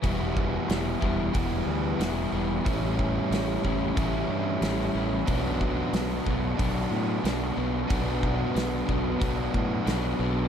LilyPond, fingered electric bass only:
\new Staff \with { instrumentName = "Fingered electric bass" } { \clef bass \time 4/4 \key e \dorian \tempo 4 = 92 e,,4 e,,8 e,,8 e,,8 d,8 e,,8 e,,8 | a,,4 a,,8 a,,8 a,,8 g,8 a,,8 a,,8 | b,,4 b,,8 b,,8 b,,8 a,8 b,,8 b,,8 | b,,4 b,,8 b,,8 b,,8 a,8 b,,8 b,,8 | }